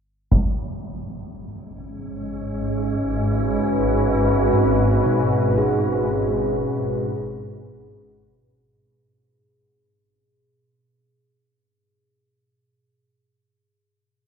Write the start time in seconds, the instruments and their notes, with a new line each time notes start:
0.32 synth drone G#1 G#2, ambient pad G#3, taiko
0.75 ambient pad C#4
2.23 ambient pad F#4 B4
4.53 singing bowl G#2
5.06 singing bowl B2
5.58 singing bowl G#4